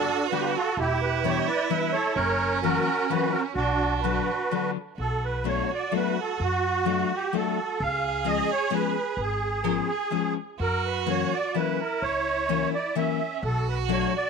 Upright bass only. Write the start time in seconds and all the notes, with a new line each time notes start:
0.77 E1
2.16 F#1
3.55 B1
4.98 B1
6.40 F#2
7.80 C#2
9.17 G#1
10.59 F#2
12.02 C#2
13.43 B1